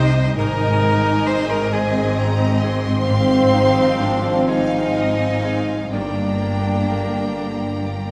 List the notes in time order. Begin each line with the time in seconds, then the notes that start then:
Already playing: C2 C3 G3 D#4 G4 C5 D#5 G5 C6
0.37 G#1 G#2 G#3 C4 D#4 A#4 D#5 G#5 A#5
0.82 G#3
1.27 C5 C6
1.50 A#4 A#5
1.72 C4 G#4 G#5
2.18 G#5 A#5
2.61 G#4 C6
3.08 G#2 F3 C4 C5 F5
3.55 G#3 D#4
4.01 D4 C5
4.47 C4 D#4 G#4 D#5 F5 G#5
4.96 D#5 F5
5.44 G#4 F5
5.92 G1 G2 D3 A#3 D4 D5 G5 A#5
6.41 A#3
6.89 A#4
7.38 D4
7.86 D5